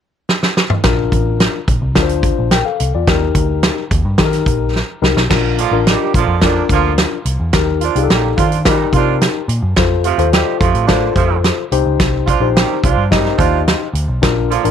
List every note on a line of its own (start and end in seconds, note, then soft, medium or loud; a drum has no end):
0.29 snare medium
0.43 snare medium
0.57 snare medium
0.70 mid tom medium
0.83 1.07 A#1 loud
0.83 1.59 D4 medium
0.83 1.59 F4 medium
0.83 1.59 A#4 medium
0.83 kick loud
0.83 snare loud
0.83 closed hi-hat medium
1.12 1.46 A1 medium
1.12 kick medium
1.12 closed hi-hat medium
1.40 snare loud
1.40 closed hi-hat medium
1.68 1.79 A#1 medium
1.68 kick medium
1.68 closed hi-hat medium
1.82 1.96 C2 medium
1.95 2.30 D2 medium
1.95 2.52 D4 medium
1.95 2.52 F4 medium
1.95 2.02 A#4 medium
1.95 kick medium
1.95 snare loud
1.95 closed hi-hat medium
2.03 2.55 C5 medium
2.09 closed hi-hat soft
2.23 kick medium
2.23 closed hi-hat medium
2.39 2.61 A#1 medium
2.51 2.65 A#4 medium
2.51 2.65 G5 medium
2.51 snare medium
2.51 closed hi-hat medium
2.65 2.92 A4 medium
2.65 2.92 F5 medium
2.80 2.91 C2 medium
2.80 closed hi-hat medium
2.94 3.05 E2 medium
2.94 3.21 F4 medium
2.94 3.21 D5 medium
3.07 3.30 D#2 medium
3.07 3.83 D#4 medium
3.07 3.83 G4 medium
3.07 3.83 A#4 medium
3.07 kick medium
3.07 snare loud
3.07 closed hi-hat medium
3.35 3.69 D2 medium
3.35 kick medium
3.35 closed hi-hat medium
3.63 snare loud
3.63 closed hi-hat medium
3.91 4.02 D#2 medium
3.91 kick medium
3.91 closed hi-hat medium
4.05 4.16 G2 medium
4.18 4.42 D#3 loud
4.18 4.75 D#4 medium
4.18 4.75 G4 medium
4.18 4.26 A4 medium
4.18 kick medium
4.18 snare loud
4.18 closed hi-hat medium
4.25 4.79 A#4 medium
4.32 snare soft
4.32 closed hi-hat medium
4.46 4.81 A#1 medium
4.46 kick medium
4.46 closed hi-hat medium
4.76 snare soft
5.02 5.14 C2 medium
5.02 5.21 D#4 medium
5.02 5.21 G4 medium
5.02 5.21 A#4 medium
5.02 snare medium
5.16 5.28 B1 medium
5.16 snare medium
5.30 5.64 A#1 medium
5.30 5.58 D4 medium
5.30 5.59 F4 medium
5.30 5.59 A#4 medium
5.30 kick medium
5.30 snare loud
5.30 crash medium
5.57 5.80 D3 medium
5.57 5.80 F3 medium
5.57 5.80 A#3 medium
5.57 5.80 F4 medium
5.57 closed hi-hat medium
5.71 5.95 A1 medium
5.71 6.20 D4 medium
5.71 6.20 F4 medium
5.71 6.20 A#4 medium
5.87 6.10 G3 medium
5.87 6.10 D#4 medium
5.87 6.10 G4 medium
5.87 snare medium
5.87 closed hi-hat medium
6.14 6.26 A#1 medium
6.14 6.38 D3 medium
6.14 6.38 F3 medium
6.14 6.37 A#3 medium
6.14 6.38 F4 medium
6.14 kick medium
6.14 closed hi-hat medium
6.27 6.61 F2 medium
6.41 6.65 A#2 medium
6.41 6.65 D3 medium
6.41 6.65 F3 medium
6.41 7.17 D4 medium
6.41 6.65 D4 loud
6.41 7.17 F4 medium
6.41 7.17 A#4 medium
6.41 kick medium
6.41 snare loud
6.41 closed hi-hat medium
6.69 7.04 D2 medium
6.69 6.93 D3 medium
6.69 6.94 F3 medium
6.69 6.93 A#3 medium
6.69 6.94 F4 medium
6.69 kick medium
6.69 closed hi-hat medium
6.98 snare medium
6.98 closed hi-hat medium
7.25 7.37 C2 medium
7.25 closed hi-hat medium
7.40 7.51 E2 medium
7.53 7.88 D#2 medium
7.53 7.82 D#4 medium
7.53 7.82 G4 medium
7.53 7.83 A#4 medium
7.53 kick medium
7.53 snare loud
7.53 closed hi-hat medium
7.81 8.04 F3 medium
7.81 8.04 D4 medium
7.81 8.04 F4 medium
7.81 closed hi-hat medium
7.95 8.07 C2 medium
7.95 8.43 D#4 medium
7.95 8.43 G4 medium
7.95 8.03 G#4 medium
7.95 closed hi-hat medium
8.03 8.47 A4 medium
8.09 8.32 A#1 medium
8.09 8.32 D#3 medium
8.09 8.32 G3 medium
8.09 8.32 A#3 medium
8.09 8.32 G4 medium
8.09 snare loud
8.09 closed hi-hat medium
8.37 8.83 D#3 medium
8.37 8.59 F3 medium
8.37 8.59 D4 medium
8.37 8.60 F4 medium
8.37 kick medium
8.37 closed hi-hat medium
8.52 closed hi-hat soft
8.65 8.89 A#2 medium
8.65 8.89 D#3 medium
8.65 8.88 G3 medium
8.65 9.41 D#4 medium
8.65 8.89 D#4 medium
8.65 8.72 F4 medium
8.65 9.41 A#4 medium
8.65 kick medium
8.65 snare loud
8.65 closed hi-hat medium
8.72 9.44 G4 medium
8.93 9.27 C3 medium
8.93 9.16 F3 medium
8.93 9.17 D4 medium
8.93 9.17 F4 medium
8.93 kick medium
8.93 closed hi-hat medium
9.21 snare medium
9.21 closed hi-hat medium
9.48 9.60 A#2 medium
9.48 closed hi-hat medium
9.62 9.74 F#2 medium
9.76 10.11 F2 medium
9.76 10.05 F4 medium
9.76 10.06 A4 medium
9.76 10.06 C5 medium
9.76 kick loud
9.76 snare loud
9.76 closed hi-hat medium
10.04 10.27 C3 medium
10.04 10.27 F3 medium
10.04 10.27 A3 medium
10.04 10.27 F4 loud
10.04 closed hi-hat medium
10.18 10.41 D#2 medium
10.18 10.66 F4 medium
10.18 10.66 A4 medium
10.18 10.66 C5 medium
10.18 closed hi-hat medium
10.33 10.55 G3 medium
10.33 10.55 D#4 medium
10.33 10.55 G4 medium
10.33 snare loud
10.33 closed hi-hat medium
10.60 10.72 F2 medium
10.60 10.83 C3 medium
10.60 10.82 F3 medium
10.60 10.83 A3 medium
10.60 10.82 F4 medium
10.60 kick medium
10.60 closed hi-hat medium
10.74 11.08 A2 medium
10.74 closed hi-hat medium
10.86 11.09 D3 medium
10.86 11.10 A#3 medium
10.86 11.10 D4 medium
10.86 11.64 F4 medium
10.86 11.64 A4 medium
10.86 11.64 C5 medium
10.86 kick medium
10.86 snare loud
10.86 closed hi-hat medium
11.16 11.50 F2 medium
11.16 11.38 C3 medium
11.16 11.38 F3 medium
11.16 11.39 A3 medium
11.16 11.38 F4 medium
11.16 kick medium
11.16 closed hi-hat medium
11.44 snare medium
11.44 closed hi-hat medium
11.72 11.83 C2 medium
11.72 12.28 D#4 medium
11.72 12.28 G4 medium
11.72 12.28 C5 medium
11.72 closed hi-hat medium
11.86 11.97 C#2 medium
12.00 12.34 C2 medium
12.00 kick loud
12.00 snare loud
12.00 closed hi-hat medium
12.27 12.50 F3 medium
12.27 12.50 D4 medium
12.27 12.49 F4 medium
12.27 kick medium
12.27 closed hi-hat medium
12.40 12.63 A#1 medium
12.40 12.88 D#4 medium
12.40 12.88 G4 medium
12.40 12.89 C5 medium
12.55 12.78 D#3 medium
12.55 12.78 G3 medium
12.55 12.78 C4 medium
12.55 12.78 G4 medium
12.55 snare loud
12.55 closed hi-hat medium
12.84 12.95 C2 medium
12.84 13.06 F3 medium
12.84 13.06 D4 medium
12.84 13.06 F4 medium
12.84 kick medium
12.84 closed hi-hat medium
12.97 13.31 G2 medium
13.11 13.34 C3 medium
13.11 13.34 D#3 medium
13.11 13.34 G3 medium
13.11 13.86 D#4 medium
13.11 13.34 D#4 medium
13.11 13.87 G4 medium
13.11 13.87 D#5 medium
13.11 kick medium
13.11 snare medium
13.11 closed hi-hat medium
13.25 snare soft
13.38 13.73 D#2 medium
13.38 13.61 F3 medium
13.38 13.61 D4 medium
13.38 13.61 F4 medium
13.38 kick medium
13.38 closed hi-hat medium
13.68 snare medium
13.68 closed hi-hat medium
13.93 14.05 D2 medium
13.93 closed hi-hat medium
14.08 14.20 B1 medium
14.22 14.57 A#1 medium
14.22 14.50 D4 medium
14.22 14.51 F4 medium
14.22 14.51 A#4 medium
14.22 kick medium
14.22 snare loud
14.22 closed hi-hat medium
14.49 14.71 D3 medium
14.49 14.71 F3 medium
14.49 14.71 A#3 medium
14.49 14.71 F4 medium
14.49 closed hi-hat medium
14.64 14.71 A1 medium
14.64 14.71 D4 medium
14.64 14.71 F4 medium
14.64 14.71 A#4 medium
14.64 closed hi-hat medium